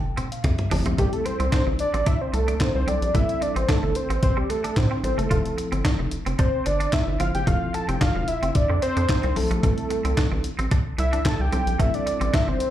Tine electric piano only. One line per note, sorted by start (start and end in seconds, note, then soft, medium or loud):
0.00 0.29 G5 medium
0.32 0.44 F5 medium
0.44 0.95 E5 medium
0.71 0.93 F3 medium
0.71 0.93 A3 medium
0.71 0.93 C4 medium
0.71 0.93 E4 medium
0.71 0.93 G4 loud
0.98 1.83 G3 medium
0.98 1.83 C4 medium
0.98 1.84 E4 medium
0.98 1.84 A4 medium
2.87 3.09 G3 medium
2.87 3.09 C4 medium
2.87 3.09 E4 medium
2.87 3.09 A4 medium
3.14 3.99 G3 medium
3.14 4.00 C4 medium
3.14 4.00 E4 medium
3.14 4.00 A4 medium
5.03 5.25 G3 medium
5.03 5.25 C4 medium
5.03 5.25 E4 medium
5.03 5.26 A4 medium
5.30 6.16 F3 medium
5.30 6.16 C4 medium
5.30 6.16 E4 medium
5.30 6.16 A4 medium
7.19 7.41 F3 medium
7.19 7.41 C4 medium
7.19 7.42 E4 medium
7.19 7.42 C5 medium
7.46 8.32 F3 medium
7.46 8.32 C4 medium
7.46 8.32 E4 medium
7.46 8.32 A4 medium
9.36 9.58 F3 medium
9.36 9.58 C4 medium
9.36 9.58 E4 medium
9.36 9.58 A4 medium
9.63 10.48 G3 medium
9.63 10.48 C4 medium
9.63 10.48 E4 medium
9.63 10.48 A4 medium
11.52 11.74 G3 medium
11.52 11.74 C4 medium
11.52 11.74 E4 medium
11.52 11.74 A4 medium
11.79 12.64 G3 medium
11.79 12.64 C4 medium
11.79 12.65 E4 medium
11.79 12.65 A4 medium